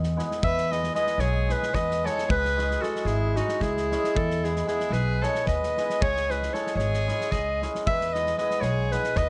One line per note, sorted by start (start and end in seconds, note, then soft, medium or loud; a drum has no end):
0.00 0.19 E2 loud
0.00 0.15 G#3 medium
0.00 snare soft
0.16 0.48 G#3 medium
0.16 0.38 B3 medium
0.16 0.38 E4 medium
0.16 0.39 G#4 medium
0.16 snare soft
0.31 snare soft
0.42 0.88 E2 medium
0.42 0.72 B4 loud
0.42 0.74 E5 loud
0.42 kick loud
0.58 snare soft
0.70 0.93 G#3 medium
0.70 0.91 B3 soft
0.70 0.91 E4 soft
0.70 0.91 G#4 medium
0.70 0.95 B4 medium
0.70 0.95 D#5 loud
0.70 snare soft
0.83 snare soft
0.94 1.46 G#3 medium
0.94 1.15 B3 medium
0.94 1.15 E4 medium
0.94 1.15 G#4 medium
0.94 1.22 B4 medium
0.94 1.22 D#5 loud
0.94 snare soft
1.07 snare soft
1.18 1.51 B1 medium
1.18 1.50 G#4 medium
1.18 1.53 C#5 medium
1.18 snare soft
1.48 2.02 G#3 soft
1.48 1.69 B3 soft
1.48 1.70 E4 medium
1.48 1.70 G#4 medium
1.48 1.76 G#4 medium
1.48 1.76 B4 loud
1.48 snare soft
1.63 snare soft
1.73 2.07 E2 loud
1.73 2.06 B4 medium
1.73 2.08 D#5 loud
1.73 kick medium
1.73 snare soft
1.91 snare soft
2.03 2.35 G#3 medium
2.03 2.25 B3 medium
2.03 2.25 E4 medium
2.03 2.25 G#4 medium
2.03 2.28 A4 medium
2.03 2.30 C#5 medium
2.03 snare soft
2.18 snare soft
2.29 2.75 C#2 medium
2.29 2.82 G#4 medium
2.29 2.84 B4 loud
2.29 kick loud
2.45 snare soft
2.56 2.80 G#3 medium
2.56 2.77 C#4 medium
2.56 2.77 E4 medium
2.56 2.78 G#4 medium
2.56 snare soft
2.71 snare soft
2.81 3.34 G#3 medium
2.81 3.01 C#4 medium
2.81 3.02 E4 medium
2.81 3.08 F#4 medium
2.81 3.02 G#4 medium
2.81 3.07 A4 loud
2.81 snare soft
2.96 snare soft
3.05 3.38 G#1 loud
3.05 3.38 E4 medium
3.05 3.38 G#4 medium
3.05 snare soft
3.35 3.90 G#3 soft
3.35 3.56 C#4 soft
3.35 3.62 D#4 medium
3.35 3.57 E4 soft
3.35 3.63 F#4 medium
3.35 3.57 G#4 medium
3.35 snare soft
3.49 snare soft
3.60 3.94 C#2 loud
3.60 4.17 E4 medium
3.60 4.18 G#4 loud
3.60 kick medium
3.60 snare soft
3.77 snare soft
3.91 4.21 G#3 medium
3.91 4.12 C#4 medium
3.91 4.12 E4 medium
3.91 4.12 G#4 medium
3.91 snare soft
4.04 snare soft
4.15 4.61 E2 medium
4.15 4.43 E4 medium
4.15 4.45 A4 loud
4.15 kick medium
4.31 snare soft
4.43 4.66 G#3 soft
4.43 4.63 B3 soft
4.43 4.66 E4 medium
4.43 4.64 E4 soft
4.43 4.68 G#4 medium
4.43 4.64 G#4 medium
4.43 snare soft
4.56 snare soft
4.67 5.20 G#3 medium
4.67 4.87 B3 medium
4.67 4.94 E4 medium
4.67 4.88 E4 medium
4.67 4.94 G#4 loud
4.67 4.88 G#4 medium
4.67 snare soft
4.80 snare soft
4.90 5.24 B1 medium
4.90 5.23 G#4 medium
4.90 5.25 B4 medium
4.90 snare soft
5.21 5.76 G#3 medium
5.21 5.42 B3 soft
5.21 5.43 E4 soft
5.21 5.43 G#4 medium
5.21 5.46 A4 medium
5.21 5.48 C#5 loud
5.21 snare soft
5.35 snare soft
5.46 5.79 D#2 medium
5.46 6.02 B4 medium
5.46 6.04 D#5 loud
5.46 kick medium
5.46 snare soft
5.63 snare soft
5.77 6.07 G#3 medium
5.77 5.98 B3 medium
5.77 5.98 E4 medium
5.77 5.98 G#4 medium
5.77 snare soft
5.90 snare soft
6.01 6.47 C#2 medium
6.01 6.30 G#4 medium
6.01 6.32 C#5 loud
6.01 kick loud
6.17 snare soft
6.28 6.51 G#3 medium
6.28 6.49 C#4 soft
6.28 6.49 E4 medium
6.28 6.54 G#4 medium
6.28 6.49 G#4 medium
6.28 6.55 B4 medium
6.28 snare soft
6.43 snare soft
6.52 7.06 G#3 medium
6.52 6.73 C#4 medium
6.52 6.73 E4 medium
6.52 6.73 G#4 medium
6.52 6.75 A4 medium
6.52 6.76 C#5 medium
6.52 snare soft
6.67 snare soft
6.75 7.09 G#1 medium
6.75 7.31 G#4 medium
6.75 7.33 C#5 medium
6.75 snare soft
6.94 snare soft
7.07 7.61 G#3 medium
7.07 7.28 C#4 soft
7.07 7.28 E4 medium
7.07 7.28 G#4 medium
7.07 snare soft
7.21 snare soft
7.31 7.65 C#2 medium
7.31 7.62 G#4 medium
7.31 7.62 D#5 medium
7.31 kick medium
7.31 snare soft
7.62 7.92 G#3 medium
7.62 7.82 C#4 soft
7.62 7.83 E4 medium
7.62 7.83 G#4 medium
7.62 snare soft
7.75 snare soft
7.86 8.32 E2 medium
7.86 8.13 B4 medium
7.86 8.15 E5 loud
7.86 kick loud
8.01 snare soft
8.13 8.37 G#3 soft
8.13 8.34 B3 soft
8.13 8.35 E4 medium
8.13 8.35 G#4 medium
8.13 8.37 B4 medium
8.13 8.38 D#5 loud
8.13 snare soft
8.26 snare soft
8.38 8.91 G#3 medium
8.38 8.58 B3 medium
8.38 8.58 E4 medium
8.38 8.59 G#4 medium
8.38 8.64 B4 medium
8.38 8.62 D#5 loud
8.38 snare soft
8.50 snare soft
8.61 8.94 B1 medium
8.61 8.92 G#4 medium
8.61 8.93 C#5 medium
8.61 snare soft
8.92 9.29 G#3 soft
8.92 9.13 B3 soft
8.92 9.13 E4 medium
8.92 9.18 G#4 medium
8.92 9.13 G#4 medium
8.92 9.19 B4 loud
8.92 snare soft
9.04 snare soft
9.16 9.29 D#2 loud
9.16 9.29 B4 medium
9.16 9.29 D#5 loud
9.16 kick medium
9.16 snare soft